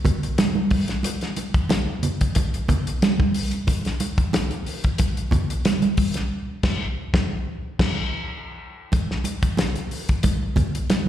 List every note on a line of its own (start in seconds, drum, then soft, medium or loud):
0.05 kick medium
0.05 closed hi-hat medium
0.05 muted conga soft
0.05 low conga medium
0.23 closed hi-hat soft
0.38 snare loud
0.38 closed hi-hat medium
0.38 high conga medium
0.55 high conga medium
0.71 kick medium
0.71 open hi-hat medium
0.88 snare soft
0.88 closed hi-hat medium
1.03 closed hi-hat medium
1.03 muted conga medium
1.21 snare soft
1.21 closed hi-hat soft
1.36 closed hi-hat medium
1.36 muted conga medium
1.54 kick loud
1.54 closed hi-hat soft
1.69 snare loud
1.69 closed hi-hat medium
1.69 high conga medium
2.03 closed hi-hat medium
2.03 low conga medium
2.21 kick medium
2.21 closed hi-hat medium
2.35 kick medium
2.35 closed hi-hat medium
2.35 muted conga medium
2.54 closed hi-hat soft
2.69 kick medium
2.69 closed hi-hat medium
2.69 muted conga soft
2.69 low conga medium
2.87 closed hi-hat soft
3.02 snare loud
3.02 closed hi-hat loud
3.02 high conga medium
3.19 kick loud
3.19 high conga medium
3.34 open hi-hat medium
3.51 closed hi-hat medium
3.67 kick medium
3.67 closed hi-hat medium
3.67 muted conga medium
3.85 snare soft
3.85 closed hi-hat soft
4.00 closed hi-hat medium
4.00 muted conga medium
4.18 kick loud
4.18 closed hi-hat medium
4.33 snare loud
4.33 closed hi-hat medium
4.33 high conga medium
4.51 closed hi-hat soft
4.66 open hi-hat medium
4.84 kick medium
4.84 closed hi-hat medium
4.98 kick loud
4.98 closed hi-hat loud
4.98 muted conga medium
5.17 closed hi-hat soft
5.31 kick medium
5.31 closed hi-hat medium
5.31 low conga medium
5.50 closed hi-hat soft
5.65 snare loud
5.65 closed hi-hat loud
5.65 high conga medium
5.82 closed hi-hat soft
5.82 high conga medium
5.97 kick medium
5.97 open hi-hat medium
6.14 snare soft
6.14 closed hi-hat medium
6.63 kick loud
6.63 snare loud
6.63 crash medium
7.14 kick loud
7.14 snare loud
7.79 kick loud
7.79 snare loud
7.79 crash medium
8.92 kick loud
8.92 closed hi-hat medium
8.92 muted conga soft
9.11 snare soft
9.24 closed hi-hat medium
9.24 muted conga medium
9.43 kick medium
9.43 closed hi-hat medium
9.57 snare loud
9.57 closed hi-hat medium
9.57 high conga medium
9.76 closed hi-hat soft
9.91 open hi-hat soft
10.09 kick medium
10.09 closed hi-hat medium
10.23 kick loud
10.23 closed hi-hat medium
10.23 muted conga medium
10.56 kick medium
10.56 closed hi-hat medium
10.56 muted conga soft
10.56 low conga medium
10.75 closed hi-hat soft
10.90 snare loud
10.90 closed hi-hat medium
10.90 high conga medium